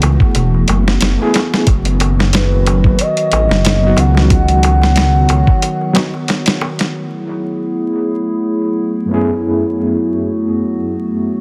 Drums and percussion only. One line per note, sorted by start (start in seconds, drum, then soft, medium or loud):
0.02 closed hi-hat medium
0.02 darbuka tek medium
0.20 kick medium
0.20 darbuka tek soft
0.35 closed hi-hat medium
0.35 darbuka tek soft
0.54 darbuka tek soft
0.68 closed hi-hat medium
0.68 darbuka tek medium
0.88 snare soft
0.88 darbuka tek soft
1.01 snare loud
1.01 closed hi-hat loud
1.01 darbuka tek soft
1.21 darbuka tek soft
1.34 snare medium
1.34 closed hi-hat medium
1.34 darbuka tek medium
1.54 snare soft
1.54 darbuka tek soft
1.67 kick loud
1.67 closed hi-hat medium
1.67 darbuka tek soft
1.85 closed hi-hat soft
1.85 darbuka tek soft
2.00 closed hi-hat medium
2.00 darbuka tek medium
2.19 snare soft
2.19 darbuka tek soft
2.33 snare loud
2.33 closed hi-hat medium
2.33 darbuka tek soft
2.52 darbuka tek soft
2.67 closed hi-hat medium
2.67 darbuka tek medium
2.84 kick loud
2.84 darbuka tek soft
2.99 closed hi-hat medium
2.99 darbuka tek soft
3.17 closed hi-hat soft
3.17 darbuka tek soft
3.32 closed hi-hat medium
3.32 darbuka tek medium
3.49 snare soft
3.49 darbuka tek soft
3.65 snare loud
3.65 closed hi-hat medium
3.65 darbuka tek medium
3.83 darbuka tek soft
3.97 closed hi-hat medium
3.97 darbuka tek medium
4.15 snare soft
4.15 darbuka tek soft
4.30 kick loud
4.30 closed hi-hat medium
4.30 darbuka tek soft
4.48 closed hi-hat soft
4.48 darbuka tek soft
4.63 closed hi-hat medium
4.63 darbuka tek medium
4.82 snare soft
4.82 darbuka tek soft
4.96 snare loud
4.96 closed hi-hat medium
4.96 darbuka tek soft
5.15 darbuka tek soft
5.29 closed hi-hat medium
5.29 darbuka tek medium
5.47 kick loud
5.47 darbuka tek soft
5.62 closed hi-hat medium
5.62 darbuka tek medium
5.81 darbuka tek soft
5.95 snare loud
5.95 closed hi-hat medium
5.95 darbuka tek medium
6.14 darbuka tek soft
6.28 snare soft
6.28 closed hi-hat medium
6.28 darbuka tek medium
6.46 snare loud
6.46 closed hi-hat medium
6.46 darbuka tek soft
6.61 darbuka tek medium
6.79 snare soft
6.79 closed hi-hat medium
6.79 darbuka tek soft